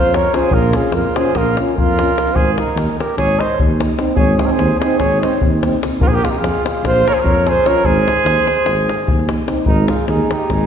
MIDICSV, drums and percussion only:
0, 0, Header, 1, 2, 480
1, 0, Start_track
1, 0, Key_signature, -4, "major"
1, 0, Tempo, 406504
1, 607, Time_signature, 9, 3, 24, 8
1, 12591, End_track
2, 0, Start_track
2, 0, Title_t, "Davul"
2, 169, Note_on_c, 9, 37, 75
2, 287, Note_off_c, 9, 37, 0
2, 291, Note_on_c, 9, 37, 26
2, 402, Note_off_c, 9, 37, 0
2, 402, Note_on_c, 9, 37, 68
2, 520, Note_off_c, 9, 37, 0
2, 607, Note_on_c, 9, 43, 97
2, 725, Note_off_c, 9, 43, 0
2, 739, Note_on_c, 9, 37, 27
2, 857, Note_off_c, 9, 37, 0
2, 865, Note_on_c, 9, 37, 67
2, 983, Note_off_c, 9, 37, 0
2, 1089, Note_on_c, 9, 37, 64
2, 1207, Note_off_c, 9, 37, 0
2, 1238, Note_on_c, 9, 37, 28
2, 1356, Note_off_c, 9, 37, 0
2, 1370, Note_on_c, 9, 37, 78
2, 1488, Note_off_c, 9, 37, 0
2, 1490, Note_on_c, 9, 37, 22
2, 1594, Note_off_c, 9, 37, 0
2, 1594, Note_on_c, 9, 37, 59
2, 1594, Note_on_c, 9, 43, 56
2, 1712, Note_off_c, 9, 37, 0
2, 1712, Note_off_c, 9, 43, 0
2, 1855, Note_on_c, 9, 37, 61
2, 1973, Note_off_c, 9, 37, 0
2, 1991, Note_on_c, 9, 37, 23
2, 2104, Note_on_c, 9, 43, 76
2, 2109, Note_off_c, 9, 37, 0
2, 2222, Note_off_c, 9, 43, 0
2, 2347, Note_on_c, 9, 37, 63
2, 2465, Note_off_c, 9, 37, 0
2, 2574, Note_on_c, 9, 37, 65
2, 2685, Note_off_c, 9, 37, 0
2, 2685, Note_on_c, 9, 37, 26
2, 2786, Note_on_c, 9, 43, 85
2, 2803, Note_off_c, 9, 37, 0
2, 2904, Note_off_c, 9, 43, 0
2, 3045, Note_on_c, 9, 37, 67
2, 3163, Note_off_c, 9, 37, 0
2, 3166, Note_on_c, 9, 37, 24
2, 3276, Note_off_c, 9, 37, 0
2, 3276, Note_on_c, 9, 37, 62
2, 3394, Note_off_c, 9, 37, 0
2, 3418, Note_on_c, 9, 37, 27
2, 3536, Note_off_c, 9, 37, 0
2, 3548, Note_on_c, 9, 37, 62
2, 3652, Note_off_c, 9, 37, 0
2, 3652, Note_on_c, 9, 37, 23
2, 3757, Note_off_c, 9, 37, 0
2, 3757, Note_on_c, 9, 37, 53
2, 3757, Note_on_c, 9, 43, 54
2, 3875, Note_off_c, 9, 37, 0
2, 3875, Note_off_c, 9, 43, 0
2, 4020, Note_on_c, 9, 37, 60
2, 4134, Note_off_c, 9, 37, 0
2, 4134, Note_on_c, 9, 37, 27
2, 4245, Note_on_c, 9, 43, 87
2, 4252, Note_off_c, 9, 37, 0
2, 4363, Note_off_c, 9, 43, 0
2, 4493, Note_on_c, 9, 37, 74
2, 4598, Note_off_c, 9, 37, 0
2, 4598, Note_on_c, 9, 37, 22
2, 4707, Note_off_c, 9, 37, 0
2, 4707, Note_on_c, 9, 37, 60
2, 4825, Note_off_c, 9, 37, 0
2, 4919, Note_on_c, 9, 43, 100
2, 5037, Note_off_c, 9, 43, 0
2, 5187, Note_on_c, 9, 37, 74
2, 5305, Note_off_c, 9, 37, 0
2, 5305, Note_on_c, 9, 37, 28
2, 5420, Note_off_c, 9, 37, 0
2, 5420, Note_on_c, 9, 37, 67
2, 5538, Note_off_c, 9, 37, 0
2, 5559, Note_on_c, 9, 37, 22
2, 5677, Note_off_c, 9, 37, 0
2, 5686, Note_on_c, 9, 37, 73
2, 5799, Note_off_c, 9, 37, 0
2, 5799, Note_on_c, 9, 37, 21
2, 5900, Note_off_c, 9, 37, 0
2, 5900, Note_on_c, 9, 37, 60
2, 5900, Note_on_c, 9, 43, 54
2, 6018, Note_off_c, 9, 37, 0
2, 6018, Note_off_c, 9, 43, 0
2, 6179, Note_on_c, 9, 37, 62
2, 6295, Note_off_c, 9, 37, 0
2, 6295, Note_on_c, 9, 37, 29
2, 6395, Note_on_c, 9, 43, 92
2, 6413, Note_off_c, 9, 37, 0
2, 6513, Note_off_c, 9, 43, 0
2, 6647, Note_on_c, 9, 37, 72
2, 6765, Note_off_c, 9, 37, 0
2, 6767, Note_on_c, 9, 37, 23
2, 6885, Note_off_c, 9, 37, 0
2, 6885, Note_on_c, 9, 37, 73
2, 7003, Note_off_c, 9, 37, 0
2, 7100, Note_on_c, 9, 43, 101
2, 7218, Note_off_c, 9, 43, 0
2, 7376, Note_on_c, 9, 37, 72
2, 7489, Note_off_c, 9, 37, 0
2, 7489, Note_on_c, 9, 37, 30
2, 7605, Note_off_c, 9, 37, 0
2, 7605, Note_on_c, 9, 37, 72
2, 7723, Note_off_c, 9, 37, 0
2, 7733, Note_on_c, 9, 37, 28
2, 7851, Note_off_c, 9, 37, 0
2, 7862, Note_on_c, 9, 37, 72
2, 7980, Note_off_c, 9, 37, 0
2, 7985, Note_on_c, 9, 37, 22
2, 8086, Note_off_c, 9, 37, 0
2, 8086, Note_on_c, 9, 37, 66
2, 8086, Note_on_c, 9, 43, 61
2, 8204, Note_off_c, 9, 37, 0
2, 8204, Note_off_c, 9, 43, 0
2, 8355, Note_on_c, 9, 37, 61
2, 8473, Note_off_c, 9, 37, 0
2, 8473, Note_on_c, 9, 37, 23
2, 8569, Note_on_c, 9, 43, 85
2, 8591, Note_off_c, 9, 37, 0
2, 8687, Note_off_c, 9, 43, 0
2, 8815, Note_on_c, 9, 37, 68
2, 8933, Note_off_c, 9, 37, 0
2, 8937, Note_on_c, 9, 37, 21
2, 9046, Note_off_c, 9, 37, 0
2, 9046, Note_on_c, 9, 37, 69
2, 9164, Note_off_c, 9, 37, 0
2, 9261, Note_on_c, 9, 43, 78
2, 9379, Note_off_c, 9, 43, 0
2, 9403, Note_on_c, 9, 37, 25
2, 9521, Note_off_c, 9, 37, 0
2, 9539, Note_on_c, 9, 37, 68
2, 9637, Note_off_c, 9, 37, 0
2, 9637, Note_on_c, 9, 37, 27
2, 9755, Note_off_c, 9, 37, 0
2, 9755, Note_on_c, 9, 37, 71
2, 9873, Note_off_c, 9, 37, 0
2, 10005, Note_on_c, 9, 37, 69
2, 10116, Note_off_c, 9, 37, 0
2, 10116, Note_on_c, 9, 37, 24
2, 10227, Note_off_c, 9, 37, 0
2, 10227, Note_on_c, 9, 37, 68
2, 10345, Note_off_c, 9, 37, 0
2, 10502, Note_on_c, 9, 37, 66
2, 10620, Note_off_c, 9, 37, 0
2, 10724, Note_on_c, 9, 43, 94
2, 10842, Note_off_c, 9, 43, 0
2, 10855, Note_on_c, 9, 37, 28
2, 10966, Note_off_c, 9, 37, 0
2, 10966, Note_on_c, 9, 37, 72
2, 11084, Note_off_c, 9, 37, 0
2, 11194, Note_on_c, 9, 37, 66
2, 11294, Note_off_c, 9, 37, 0
2, 11294, Note_on_c, 9, 37, 28
2, 11407, Note_on_c, 9, 43, 81
2, 11412, Note_off_c, 9, 37, 0
2, 11525, Note_off_c, 9, 43, 0
2, 11669, Note_on_c, 9, 37, 72
2, 11787, Note_off_c, 9, 37, 0
2, 11904, Note_on_c, 9, 37, 61
2, 12022, Note_off_c, 9, 37, 0
2, 12170, Note_on_c, 9, 37, 65
2, 12288, Note_off_c, 9, 37, 0
2, 12397, Note_on_c, 9, 37, 53
2, 12397, Note_on_c, 9, 43, 57
2, 12515, Note_off_c, 9, 37, 0
2, 12515, Note_off_c, 9, 43, 0
2, 12591, End_track
0, 0, End_of_file